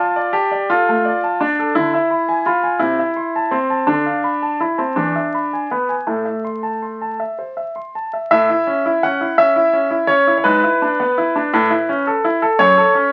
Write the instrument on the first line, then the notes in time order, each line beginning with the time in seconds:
grand piano
Already playing: F4
0.00 A5
0.16 D5
0.33 G4 A5
0.51 D5
0.70 F4 A4
0.89 A3
1.05 D5
1.24 A5
1.41 D4 D5
1.59 A4
1.75 D3 E4
1.94 E5
2.11 B5
2.29 G#5
2.46 F4 B5
2.63 G#5
2.79 C3 E4
2.99 E5
3.16 C6
3.36 A5
3.51 C4 C6
3.70 A5
3.87 D3 D4
4.06 F5
4.24 B5
4.42 A5
4.60 E4 B5
4.78 C4 A5
4.96 E2 D4
5.16 E5
5.34 B5
5.53 G#5
5.71 B3 B5
5.89 G#5
6.07 A2 A3
6.25 E5
6.45 C6
6.63 A5
6.82 C6
7.01 A5
7.20 E5
7.39 C5
7.57 E5
7.76 C6
7.95 A5
8.13 E5
8.31 A2 E5
8.50 E4
8.67 C#4
8.86 E4
9.03 C#4 F#5
9.21 E4
9.38 C#4 E5
9.56 E4
9.73 C#4
9.91 E4
10.07 C#4 C#5
10.27 E4
10.38 C#5
10.44 G#2 B4
10.64 E4
10.82 D4
11.00 B3
11.18 E4
11.36 D4
11.54 A2
11.70 E4
11.89 C#4
12.07 A4
12.24 E4
12.42 A4
12.59 F#2 C#5
12.77 A4
12.95 C#4